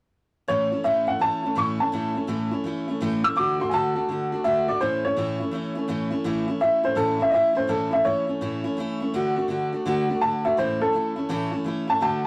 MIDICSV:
0, 0, Header, 1, 3, 480
1, 0, Start_track
1, 0, Key_signature, 3, "major"
1, 0, Tempo, 360360
1, 643, Time_signature, 4, 2, 24, 8
1, 16340, End_track
2, 0, Start_track
2, 0, Title_t, "Upright piano"
2, 0, Program_c, 0, 0
2, 643, Note_on_c, 0, 73, 96
2, 1109, Note_off_c, 0, 73, 0
2, 1121, Note_on_c, 0, 76, 80
2, 1425, Note_off_c, 0, 76, 0
2, 1436, Note_on_c, 0, 78, 81
2, 1599, Note_off_c, 0, 78, 0
2, 1618, Note_on_c, 0, 81, 96
2, 2077, Note_off_c, 0, 81, 0
2, 2103, Note_on_c, 0, 85, 75
2, 2397, Note_off_c, 0, 85, 0
2, 2401, Note_on_c, 0, 81, 81
2, 3331, Note_off_c, 0, 81, 0
2, 4322, Note_on_c, 0, 88, 86
2, 4484, Note_off_c, 0, 88, 0
2, 4484, Note_on_c, 0, 86, 88
2, 4788, Note_off_c, 0, 86, 0
2, 4813, Note_on_c, 0, 84, 85
2, 4922, Note_on_c, 0, 80, 62
2, 4961, Note_off_c, 0, 80, 0
2, 4969, Note_off_c, 0, 84, 0
2, 4979, Note_on_c, 0, 81, 90
2, 5905, Note_off_c, 0, 81, 0
2, 5917, Note_on_c, 0, 76, 83
2, 6225, Note_off_c, 0, 76, 0
2, 6240, Note_on_c, 0, 74, 83
2, 6402, Note_on_c, 0, 72, 95
2, 6403, Note_off_c, 0, 74, 0
2, 6708, Note_off_c, 0, 72, 0
2, 6721, Note_on_c, 0, 73, 97
2, 8118, Note_off_c, 0, 73, 0
2, 8805, Note_on_c, 0, 76, 89
2, 9109, Note_off_c, 0, 76, 0
2, 9119, Note_on_c, 0, 72, 85
2, 9280, Note_on_c, 0, 69, 89
2, 9283, Note_off_c, 0, 72, 0
2, 9586, Note_off_c, 0, 69, 0
2, 9620, Note_on_c, 0, 76, 86
2, 9720, Note_on_c, 0, 75, 62
2, 9760, Note_off_c, 0, 75, 0
2, 9760, Note_off_c, 0, 76, 0
2, 9780, Note_on_c, 0, 76, 87
2, 10076, Note_off_c, 0, 76, 0
2, 10079, Note_on_c, 0, 72, 79
2, 10243, Note_off_c, 0, 72, 0
2, 10246, Note_on_c, 0, 69, 75
2, 10549, Note_off_c, 0, 69, 0
2, 10562, Note_on_c, 0, 76, 86
2, 10719, Note_on_c, 0, 73, 89
2, 10724, Note_off_c, 0, 76, 0
2, 12119, Note_off_c, 0, 73, 0
2, 13605, Note_on_c, 0, 81, 89
2, 13908, Note_off_c, 0, 81, 0
2, 13917, Note_on_c, 0, 76, 79
2, 14080, Note_off_c, 0, 76, 0
2, 14095, Note_on_c, 0, 72, 85
2, 14393, Note_off_c, 0, 72, 0
2, 14406, Note_on_c, 0, 69, 95
2, 15333, Note_off_c, 0, 69, 0
2, 15847, Note_on_c, 0, 81, 90
2, 15997, Note_off_c, 0, 81, 0
2, 16017, Note_on_c, 0, 81, 88
2, 16297, Note_off_c, 0, 81, 0
2, 16340, End_track
3, 0, Start_track
3, 0, Title_t, "Steel-string acoustic guitar"
3, 0, Program_c, 1, 25
3, 633, Note_on_c, 1, 45, 73
3, 643, Note_on_c, 1, 52, 72
3, 655, Note_on_c, 1, 57, 82
3, 662, Note_on_c, 1, 61, 75
3, 665, Note_on_c, 1, 64, 76
3, 938, Note_off_c, 1, 64, 0
3, 951, Note_off_c, 1, 45, 0
3, 954, Note_on_c, 1, 64, 50
3, 955, Note_off_c, 1, 52, 0
3, 957, Note_off_c, 1, 61, 0
3, 961, Note_off_c, 1, 57, 0
3, 972, Note_on_c, 1, 61, 45
3, 995, Note_on_c, 1, 57, 40
3, 1113, Note_on_c, 1, 45, 69
3, 1116, Note_off_c, 1, 57, 0
3, 1121, Note_on_c, 1, 52, 72
3, 1122, Note_off_c, 1, 61, 0
3, 1123, Note_off_c, 1, 64, 0
3, 1132, Note_on_c, 1, 57, 81
3, 1138, Note_on_c, 1, 61, 80
3, 1142, Note_on_c, 1, 64, 83
3, 1409, Note_off_c, 1, 64, 0
3, 1425, Note_on_c, 1, 64, 55
3, 1428, Note_off_c, 1, 61, 0
3, 1431, Note_off_c, 1, 45, 0
3, 1435, Note_off_c, 1, 52, 0
3, 1440, Note_off_c, 1, 57, 0
3, 1444, Note_on_c, 1, 61, 47
3, 1465, Note_on_c, 1, 57, 42
3, 1589, Note_on_c, 1, 52, 59
3, 1593, Note_off_c, 1, 57, 0
3, 1599, Note_off_c, 1, 64, 0
3, 1604, Note_off_c, 1, 61, 0
3, 1609, Note_on_c, 1, 57, 62
3, 1620, Note_on_c, 1, 61, 66
3, 1634, Note_on_c, 1, 64, 69
3, 1891, Note_off_c, 1, 64, 0
3, 1907, Note_on_c, 1, 64, 51
3, 1909, Note_off_c, 1, 52, 0
3, 1919, Note_off_c, 1, 57, 0
3, 1921, Note_off_c, 1, 61, 0
3, 1937, Note_on_c, 1, 61, 51
3, 1949, Note_on_c, 1, 57, 46
3, 2070, Note_on_c, 1, 45, 86
3, 2071, Note_off_c, 1, 57, 0
3, 2080, Note_off_c, 1, 64, 0
3, 2080, Note_on_c, 1, 52, 86
3, 2081, Note_off_c, 1, 61, 0
3, 2087, Note_on_c, 1, 57, 76
3, 2097, Note_on_c, 1, 61, 87
3, 2107, Note_on_c, 1, 64, 92
3, 2381, Note_off_c, 1, 64, 0
3, 2390, Note_off_c, 1, 45, 0
3, 2394, Note_off_c, 1, 52, 0
3, 2397, Note_on_c, 1, 64, 56
3, 2398, Note_off_c, 1, 57, 0
3, 2403, Note_off_c, 1, 61, 0
3, 2417, Note_on_c, 1, 61, 50
3, 2440, Note_on_c, 1, 57, 45
3, 2560, Note_off_c, 1, 57, 0
3, 2560, Note_on_c, 1, 45, 75
3, 2564, Note_off_c, 1, 61, 0
3, 2566, Note_off_c, 1, 64, 0
3, 2573, Note_on_c, 1, 52, 70
3, 2576, Note_on_c, 1, 57, 81
3, 2580, Note_on_c, 1, 61, 73
3, 2593, Note_on_c, 1, 64, 83
3, 2848, Note_off_c, 1, 64, 0
3, 2864, Note_on_c, 1, 64, 49
3, 2868, Note_off_c, 1, 61, 0
3, 2875, Note_off_c, 1, 45, 0
3, 2881, Note_off_c, 1, 52, 0
3, 2882, Note_off_c, 1, 57, 0
3, 2884, Note_on_c, 1, 61, 49
3, 2902, Note_on_c, 1, 57, 39
3, 3028, Note_off_c, 1, 57, 0
3, 3028, Note_on_c, 1, 45, 76
3, 3035, Note_off_c, 1, 61, 0
3, 3036, Note_on_c, 1, 52, 87
3, 3039, Note_off_c, 1, 64, 0
3, 3044, Note_on_c, 1, 57, 86
3, 3051, Note_on_c, 1, 61, 86
3, 3053, Note_on_c, 1, 64, 92
3, 3330, Note_off_c, 1, 64, 0
3, 3346, Note_on_c, 1, 64, 62
3, 3349, Note_off_c, 1, 45, 0
3, 3352, Note_off_c, 1, 61, 0
3, 3353, Note_off_c, 1, 52, 0
3, 3357, Note_off_c, 1, 57, 0
3, 3368, Note_on_c, 1, 61, 51
3, 3385, Note_on_c, 1, 57, 48
3, 3516, Note_off_c, 1, 57, 0
3, 3516, Note_on_c, 1, 52, 66
3, 3520, Note_off_c, 1, 64, 0
3, 3531, Note_off_c, 1, 61, 0
3, 3532, Note_on_c, 1, 57, 73
3, 3549, Note_on_c, 1, 61, 76
3, 3556, Note_on_c, 1, 64, 71
3, 3818, Note_off_c, 1, 64, 0
3, 3833, Note_off_c, 1, 52, 0
3, 3834, Note_on_c, 1, 64, 57
3, 3839, Note_off_c, 1, 61, 0
3, 3841, Note_off_c, 1, 57, 0
3, 3855, Note_on_c, 1, 61, 53
3, 3872, Note_on_c, 1, 57, 52
3, 4004, Note_off_c, 1, 64, 0
3, 4004, Note_on_c, 1, 45, 88
3, 4005, Note_off_c, 1, 57, 0
3, 4011, Note_off_c, 1, 61, 0
3, 4017, Note_on_c, 1, 52, 99
3, 4021, Note_on_c, 1, 57, 99
3, 4027, Note_on_c, 1, 61, 89
3, 4033, Note_on_c, 1, 64, 103
3, 4296, Note_off_c, 1, 64, 0
3, 4312, Note_on_c, 1, 64, 59
3, 4317, Note_off_c, 1, 45, 0
3, 4317, Note_off_c, 1, 61, 0
3, 4324, Note_off_c, 1, 52, 0
3, 4326, Note_off_c, 1, 57, 0
3, 4333, Note_on_c, 1, 61, 48
3, 4352, Note_on_c, 1, 57, 46
3, 4472, Note_off_c, 1, 57, 0
3, 4473, Note_on_c, 1, 50, 74
3, 4483, Note_off_c, 1, 64, 0
3, 4488, Note_on_c, 1, 57, 78
3, 4494, Note_off_c, 1, 61, 0
3, 4500, Note_on_c, 1, 62, 73
3, 4507, Note_on_c, 1, 66, 82
3, 4776, Note_off_c, 1, 66, 0
3, 4792, Note_off_c, 1, 50, 0
3, 4792, Note_on_c, 1, 66, 47
3, 4799, Note_off_c, 1, 57, 0
3, 4799, Note_off_c, 1, 62, 0
3, 4815, Note_on_c, 1, 62, 43
3, 4831, Note_on_c, 1, 57, 42
3, 4946, Note_on_c, 1, 50, 78
3, 4949, Note_off_c, 1, 57, 0
3, 4955, Note_off_c, 1, 62, 0
3, 4964, Note_off_c, 1, 66, 0
3, 4965, Note_on_c, 1, 57, 82
3, 4971, Note_on_c, 1, 62, 75
3, 4978, Note_on_c, 1, 66, 82
3, 5248, Note_off_c, 1, 66, 0
3, 5264, Note_on_c, 1, 66, 54
3, 5269, Note_off_c, 1, 50, 0
3, 5269, Note_off_c, 1, 62, 0
3, 5278, Note_off_c, 1, 57, 0
3, 5285, Note_on_c, 1, 62, 52
3, 5308, Note_on_c, 1, 57, 43
3, 5440, Note_off_c, 1, 66, 0
3, 5443, Note_on_c, 1, 50, 62
3, 5444, Note_off_c, 1, 57, 0
3, 5450, Note_off_c, 1, 62, 0
3, 5460, Note_on_c, 1, 57, 63
3, 5475, Note_on_c, 1, 62, 67
3, 5486, Note_on_c, 1, 66, 66
3, 5739, Note_off_c, 1, 66, 0
3, 5755, Note_on_c, 1, 66, 58
3, 5757, Note_off_c, 1, 50, 0
3, 5760, Note_off_c, 1, 62, 0
3, 5766, Note_off_c, 1, 57, 0
3, 5776, Note_on_c, 1, 62, 58
3, 5796, Note_on_c, 1, 57, 48
3, 5909, Note_off_c, 1, 57, 0
3, 5917, Note_off_c, 1, 62, 0
3, 5918, Note_on_c, 1, 50, 81
3, 5925, Note_on_c, 1, 57, 89
3, 5926, Note_off_c, 1, 66, 0
3, 5933, Note_on_c, 1, 62, 83
3, 5946, Note_on_c, 1, 66, 91
3, 6216, Note_off_c, 1, 66, 0
3, 6232, Note_on_c, 1, 66, 61
3, 6235, Note_off_c, 1, 50, 0
3, 6239, Note_off_c, 1, 57, 0
3, 6242, Note_off_c, 1, 62, 0
3, 6260, Note_on_c, 1, 62, 51
3, 6273, Note_on_c, 1, 57, 47
3, 6401, Note_off_c, 1, 57, 0
3, 6402, Note_on_c, 1, 45, 75
3, 6405, Note_off_c, 1, 66, 0
3, 6411, Note_on_c, 1, 52, 73
3, 6417, Note_on_c, 1, 57, 76
3, 6418, Note_off_c, 1, 62, 0
3, 6424, Note_on_c, 1, 61, 76
3, 6430, Note_on_c, 1, 64, 77
3, 6706, Note_off_c, 1, 64, 0
3, 6717, Note_off_c, 1, 45, 0
3, 6722, Note_off_c, 1, 52, 0
3, 6722, Note_on_c, 1, 64, 55
3, 6725, Note_off_c, 1, 57, 0
3, 6728, Note_off_c, 1, 61, 0
3, 6742, Note_on_c, 1, 61, 45
3, 6761, Note_on_c, 1, 57, 42
3, 6879, Note_off_c, 1, 57, 0
3, 6880, Note_on_c, 1, 45, 83
3, 6883, Note_off_c, 1, 61, 0
3, 6887, Note_on_c, 1, 52, 81
3, 6890, Note_off_c, 1, 64, 0
3, 6895, Note_on_c, 1, 57, 77
3, 6899, Note_on_c, 1, 61, 81
3, 6908, Note_on_c, 1, 64, 88
3, 7178, Note_off_c, 1, 64, 0
3, 7194, Note_on_c, 1, 64, 52
3, 7196, Note_off_c, 1, 45, 0
3, 7200, Note_off_c, 1, 52, 0
3, 7204, Note_off_c, 1, 57, 0
3, 7206, Note_off_c, 1, 61, 0
3, 7220, Note_on_c, 1, 61, 49
3, 7234, Note_on_c, 1, 57, 44
3, 7344, Note_off_c, 1, 57, 0
3, 7345, Note_on_c, 1, 52, 70
3, 7360, Note_off_c, 1, 61, 0
3, 7360, Note_on_c, 1, 57, 74
3, 7366, Note_off_c, 1, 64, 0
3, 7376, Note_on_c, 1, 61, 72
3, 7389, Note_on_c, 1, 64, 73
3, 7646, Note_off_c, 1, 64, 0
3, 7662, Note_on_c, 1, 64, 61
3, 7669, Note_off_c, 1, 52, 0
3, 7672, Note_off_c, 1, 61, 0
3, 7676, Note_off_c, 1, 57, 0
3, 7688, Note_on_c, 1, 61, 51
3, 7707, Note_on_c, 1, 57, 46
3, 7828, Note_off_c, 1, 57, 0
3, 7828, Note_on_c, 1, 45, 87
3, 7837, Note_off_c, 1, 61, 0
3, 7837, Note_on_c, 1, 52, 92
3, 7839, Note_off_c, 1, 64, 0
3, 7844, Note_on_c, 1, 57, 92
3, 7853, Note_on_c, 1, 61, 101
3, 7857, Note_on_c, 1, 64, 89
3, 8117, Note_off_c, 1, 64, 0
3, 8133, Note_on_c, 1, 64, 60
3, 8137, Note_off_c, 1, 61, 0
3, 8150, Note_off_c, 1, 45, 0
3, 8153, Note_on_c, 1, 61, 57
3, 8154, Note_off_c, 1, 57, 0
3, 8155, Note_off_c, 1, 52, 0
3, 8170, Note_on_c, 1, 57, 53
3, 8309, Note_off_c, 1, 57, 0
3, 8314, Note_on_c, 1, 45, 80
3, 8315, Note_off_c, 1, 64, 0
3, 8318, Note_off_c, 1, 61, 0
3, 8318, Note_on_c, 1, 52, 84
3, 8325, Note_on_c, 1, 57, 82
3, 8334, Note_on_c, 1, 61, 87
3, 8341, Note_on_c, 1, 64, 90
3, 8611, Note_off_c, 1, 64, 0
3, 8627, Note_on_c, 1, 64, 57
3, 8631, Note_off_c, 1, 61, 0
3, 8633, Note_off_c, 1, 45, 0
3, 8635, Note_off_c, 1, 52, 0
3, 8638, Note_off_c, 1, 57, 0
3, 8647, Note_on_c, 1, 61, 52
3, 8665, Note_on_c, 1, 57, 42
3, 8792, Note_off_c, 1, 57, 0
3, 8795, Note_on_c, 1, 52, 59
3, 8802, Note_off_c, 1, 64, 0
3, 8803, Note_off_c, 1, 61, 0
3, 8808, Note_on_c, 1, 57, 57
3, 8819, Note_on_c, 1, 61, 68
3, 8836, Note_on_c, 1, 64, 66
3, 9085, Note_off_c, 1, 64, 0
3, 9101, Note_on_c, 1, 64, 55
3, 9111, Note_off_c, 1, 61, 0
3, 9113, Note_off_c, 1, 52, 0
3, 9120, Note_off_c, 1, 57, 0
3, 9127, Note_on_c, 1, 61, 48
3, 9145, Note_on_c, 1, 57, 43
3, 9260, Note_on_c, 1, 45, 84
3, 9264, Note_off_c, 1, 57, 0
3, 9272, Note_off_c, 1, 61, 0
3, 9272, Note_on_c, 1, 52, 75
3, 9275, Note_off_c, 1, 64, 0
3, 9280, Note_on_c, 1, 57, 83
3, 9288, Note_on_c, 1, 61, 94
3, 9291, Note_on_c, 1, 64, 86
3, 9569, Note_off_c, 1, 64, 0
3, 9585, Note_on_c, 1, 64, 56
3, 9586, Note_off_c, 1, 45, 0
3, 9589, Note_off_c, 1, 61, 0
3, 9592, Note_off_c, 1, 52, 0
3, 9596, Note_off_c, 1, 57, 0
3, 9605, Note_on_c, 1, 61, 51
3, 9621, Note_on_c, 1, 57, 49
3, 9742, Note_on_c, 1, 52, 63
3, 9746, Note_off_c, 1, 57, 0
3, 9758, Note_off_c, 1, 61, 0
3, 9761, Note_off_c, 1, 64, 0
3, 9762, Note_on_c, 1, 57, 59
3, 9774, Note_on_c, 1, 61, 63
3, 9790, Note_on_c, 1, 64, 74
3, 10040, Note_off_c, 1, 64, 0
3, 10056, Note_on_c, 1, 64, 57
3, 10060, Note_off_c, 1, 61, 0
3, 10067, Note_off_c, 1, 52, 0
3, 10076, Note_on_c, 1, 61, 54
3, 10077, Note_off_c, 1, 57, 0
3, 10093, Note_on_c, 1, 57, 50
3, 10223, Note_on_c, 1, 45, 71
3, 10226, Note_off_c, 1, 57, 0
3, 10233, Note_off_c, 1, 61, 0
3, 10236, Note_off_c, 1, 64, 0
3, 10238, Note_on_c, 1, 52, 78
3, 10242, Note_on_c, 1, 57, 80
3, 10249, Note_on_c, 1, 61, 87
3, 10252, Note_on_c, 1, 64, 82
3, 10518, Note_off_c, 1, 64, 0
3, 10534, Note_on_c, 1, 64, 52
3, 10544, Note_off_c, 1, 61, 0
3, 10547, Note_off_c, 1, 45, 0
3, 10555, Note_off_c, 1, 52, 0
3, 10557, Note_off_c, 1, 57, 0
3, 10560, Note_on_c, 1, 61, 51
3, 10582, Note_on_c, 1, 57, 41
3, 10708, Note_off_c, 1, 57, 0
3, 10712, Note_on_c, 1, 52, 62
3, 10715, Note_off_c, 1, 64, 0
3, 10720, Note_off_c, 1, 61, 0
3, 10724, Note_on_c, 1, 57, 59
3, 10736, Note_on_c, 1, 61, 64
3, 10748, Note_on_c, 1, 64, 70
3, 11000, Note_off_c, 1, 64, 0
3, 11016, Note_on_c, 1, 64, 48
3, 11026, Note_off_c, 1, 61, 0
3, 11032, Note_off_c, 1, 52, 0
3, 11037, Note_off_c, 1, 57, 0
3, 11042, Note_on_c, 1, 61, 49
3, 11057, Note_on_c, 1, 57, 48
3, 11196, Note_off_c, 1, 64, 0
3, 11199, Note_off_c, 1, 57, 0
3, 11202, Note_off_c, 1, 61, 0
3, 11202, Note_on_c, 1, 45, 78
3, 11206, Note_on_c, 1, 52, 76
3, 11215, Note_on_c, 1, 57, 82
3, 11218, Note_on_c, 1, 61, 92
3, 11228, Note_on_c, 1, 64, 82
3, 11492, Note_off_c, 1, 64, 0
3, 11508, Note_on_c, 1, 64, 68
3, 11515, Note_off_c, 1, 61, 0
3, 11516, Note_off_c, 1, 45, 0
3, 11518, Note_off_c, 1, 52, 0
3, 11523, Note_off_c, 1, 57, 0
3, 11531, Note_on_c, 1, 61, 54
3, 11551, Note_on_c, 1, 57, 47
3, 11679, Note_off_c, 1, 57, 0
3, 11679, Note_on_c, 1, 52, 70
3, 11682, Note_off_c, 1, 64, 0
3, 11693, Note_off_c, 1, 61, 0
3, 11695, Note_on_c, 1, 57, 70
3, 11711, Note_on_c, 1, 61, 78
3, 11723, Note_on_c, 1, 64, 87
3, 11974, Note_off_c, 1, 64, 0
3, 11990, Note_on_c, 1, 64, 65
3, 11995, Note_off_c, 1, 52, 0
3, 11999, Note_off_c, 1, 61, 0
3, 12003, Note_off_c, 1, 57, 0
3, 12015, Note_on_c, 1, 61, 59
3, 12033, Note_on_c, 1, 57, 49
3, 12161, Note_off_c, 1, 57, 0
3, 12162, Note_off_c, 1, 64, 0
3, 12169, Note_on_c, 1, 50, 85
3, 12175, Note_off_c, 1, 61, 0
3, 12177, Note_on_c, 1, 57, 94
3, 12183, Note_on_c, 1, 62, 88
3, 12196, Note_on_c, 1, 66, 93
3, 12454, Note_off_c, 1, 66, 0
3, 12470, Note_on_c, 1, 66, 58
3, 12479, Note_off_c, 1, 50, 0
3, 12479, Note_off_c, 1, 62, 0
3, 12483, Note_off_c, 1, 57, 0
3, 12495, Note_on_c, 1, 62, 50
3, 12507, Note_on_c, 1, 57, 47
3, 12625, Note_off_c, 1, 57, 0
3, 12627, Note_on_c, 1, 50, 65
3, 12640, Note_off_c, 1, 62, 0
3, 12641, Note_on_c, 1, 57, 67
3, 12642, Note_off_c, 1, 66, 0
3, 12656, Note_on_c, 1, 62, 78
3, 12668, Note_on_c, 1, 66, 79
3, 12938, Note_off_c, 1, 66, 0
3, 12948, Note_off_c, 1, 50, 0
3, 12954, Note_on_c, 1, 66, 58
3, 12955, Note_off_c, 1, 57, 0
3, 12960, Note_off_c, 1, 62, 0
3, 12976, Note_on_c, 1, 62, 54
3, 12996, Note_on_c, 1, 57, 52
3, 13123, Note_off_c, 1, 57, 0
3, 13124, Note_off_c, 1, 66, 0
3, 13127, Note_on_c, 1, 50, 99
3, 13135, Note_off_c, 1, 62, 0
3, 13139, Note_on_c, 1, 57, 90
3, 13149, Note_on_c, 1, 62, 98
3, 13157, Note_on_c, 1, 66, 110
3, 13422, Note_off_c, 1, 66, 0
3, 13438, Note_off_c, 1, 50, 0
3, 13438, Note_on_c, 1, 66, 58
3, 13442, Note_off_c, 1, 62, 0
3, 13444, Note_off_c, 1, 57, 0
3, 13458, Note_on_c, 1, 62, 51
3, 13477, Note_on_c, 1, 57, 49
3, 13603, Note_on_c, 1, 50, 61
3, 13605, Note_off_c, 1, 57, 0
3, 13606, Note_off_c, 1, 66, 0
3, 13613, Note_off_c, 1, 62, 0
3, 13621, Note_on_c, 1, 57, 70
3, 13629, Note_on_c, 1, 62, 73
3, 13639, Note_on_c, 1, 66, 68
3, 13899, Note_off_c, 1, 66, 0
3, 13915, Note_on_c, 1, 66, 63
3, 13916, Note_off_c, 1, 50, 0
3, 13923, Note_off_c, 1, 62, 0
3, 13925, Note_off_c, 1, 57, 0
3, 13939, Note_on_c, 1, 62, 52
3, 13954, Note_on_c, 1, 57, 47
3, 14081, Note_on_c, 1, 45, 71
3, 14084, Note_off_c, 1, 57, 0
3, 14085, Note_off_c, 1, 66, 0
3, 14090, Note_on_c, 1, 52, 75
3, 14097, Note_off_c, 1, 62, 0
3, 14100, Note_on_c, 1, 57, 87
3, 14107, Note_on_c, 1, 61, 77
3, 14114, Note_on_c, 1, 64, 84
3, 14378, Note_off_c, 1, 64, 0
3, 14394, Note_on_c, 1, 64, 52
3, 14395, Note_off_c, 1, 45, 0
3, 14395, Note_off_c, 1, 61, 0
3, 14399, Note_off_c, 1, 52, 0
3, 14405, Note_off_c, 1, 57, 0
3, 14411, Note_on_c, 1, 61, 46
3, 14429, Note_on_c, 1, 57, 44
3, 14560, Note_on_c, 1, 52, 57
3, 14563, Note_off_c, 1, 57, 0
3, 14564, Note_off_c, 1, 64, 0
3, 14573, Note_off_c, 1, 61, 0
3, 14579, Note_on_c, 1, 57, 63
3, 14588, Note_on_c, 1, 61, 66
3, 14599, Note_on_c, 1, 64, 67
3, 14849, Note_off_c, 1, 64, 0
3, 14865, Note_on_c, 1, 64, 58
3, 14872, Note_off_c, 1, 61, 0
3, 14875, Note_off_c, 1, 52, 0
3, 14884, Note_off_c, 1, 57, 0
3, 14888, Note_on_c, 1, 61, 51
3, 14904, Note_on_c, 1, 57, 46
3, 15034, Note_off_c, 1, 57, 0
3, 15036, Note_on_c, 1, 45, 85
3, 15039, Note_off_c, 1, 64, 0
3, 15042, Note_off_c, 1, 61, 0
3, 15043, Note_on_c, 1, 52, 95
3, 15050, Note_on_c, 1, 57, 102
3, 15058, Note_on_c, 1, 61, 104
3, 15069, Note_on_c, 1, 64, 105
3, 15328, Note_off_c, 1, 64, 0
3, 15344, Note_on_c, 1, 64, 60
3, 15348, Note_off_c, 1, 61, 0
3, 15353, Note_off_c, 1, 45, 0
3, 15356, Note_off_c, 1, 52, 0
3, 15360, Note_off_c, 1, 57, 0
3, 15364, Note_on_c, 1, 61, 55
3, 15384, Note_on_c, 1, 57, 48
3, 15510, Note_on_c, 1, 52, 67
3, 15512, Note_off_c, 1, 57, 0
3, 15519, Note_off_c, 1, 64, 0
3, 15520, Note_off_c, 1, 61, 0
3, 15528, Note_on_c, 1, 57, 70
3, 15536, Note_on_c, 1, 61, 72
3, 15554, Note_on_c, 1, 64, 78
3, 15804, Note_off_c, 1, 64, 0
3, 15820, Note_on_c, 1, 64, 56
3, 15830, Note_off_c, 1, 52, 0
3, 15831, Note_off_c, 1, 61, 0
3, 15839, Note_off_c, 1, 57, 0
3, 15847, Note_on_c, 1, 61, 50
3, 15863, Note_on_c, 1, 57, 45
3, 15988, Note_off_c, 1, 57, 0
3, 15990, Note_on_c, 1, 50, 73
3, 15997, Note_off_c, 1, 64, 0
3, 16004, Note_on_c, 1, 57, 85
3, 16006, Note_off_c, 1, 61, 0
3, 16011, Note_on_c, 1, 62, 79
3, 16018, Note_on_c, 1, 66, 80
3, 16290, Note_off_c, 1, 66, 0
3, 16310, Note_off_c, 1, 50, 0
3, 16313, Note_off_c, 1, 62, 0
3, 16317, Note_off_c, 1, 57, 0
3, 16340, End_track
0, 0, End_of_file